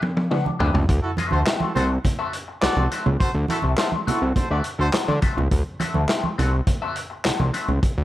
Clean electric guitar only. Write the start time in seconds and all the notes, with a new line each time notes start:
0.02 muted clean electric guitar stroke
0.17 muted clean electric guitar stroke
0.31 D4 G4 B4 F#5
0.46 muted clean electric guitar stroke
0.59 D4 G4 B4 E5
0.74 muted clean electric guitar stroke
1.18 C4 F#4 A4 E5
1.47 C4 F#4 A4 E5
1.62 muted clean electric guitar stroke
1.76 C4 F#4 A4 F#5
1.90 muted clean electric guitar stroke
2.06 muted clean electric guitar stroke
2.19 C4 F#4 A4 E5
2.34 muted clean electric guitar stroke
2.48 muted clean electric guitar stroke
2.62 C4 F#4 A4 F#5
2.77 muted clean electric guitar stroke
2.91 C4 F#4 A4 E5
3.07 muted clean electric guitar stroke
3.50 C4 F#4 A4 E5
3.79 C4 F#4 A4 E5
3.94 muted clean electric guitar stroke
4.07 C4 F#4 A4 F#5
4.23 muted clean electric guitar stroke
4.36 muted clean electric guitar stroke
4.51 C4 F#4 A4 E5
4.66 muted clean electric guitar stroke
4.80 muted clean electric guitar stroke
4.93 C4 F#4 A4 F#5
5.08 muted clean electric guitar stroke
5.22 C4 F#4 A4 E5
5.37 muted clean electric guitar stroke
5.80 C4 F#4 A4 E5
6.08 C4 F#4 A4 E5
6.24 muted clean electric guitar stroke
6.38 C4 F#4 A4 F#5
6.53 muted clean electric guitar stroke
6.68 muted clean electric guitar stroke
6.82 C4 F#4 A4 E5
6.97 muted clean electric guitar stroke
7.10 muted clean electric guitar stroke
7.25 C4 F#4 A4 F#5
7.39 muted clean electric guitar stroke
7.54 C4 F#4 A4 E5
7.67 muted clean electric guitar stroke